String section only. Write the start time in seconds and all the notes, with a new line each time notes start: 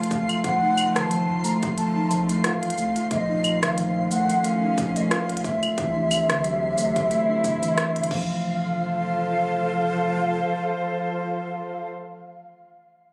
Already playing: F3 A3 F4
3.11 A#2
4.32 C#4
5.78 C3
6.99 E4
8.11 F3
8.22 F4
8.66 A4
8.75 C5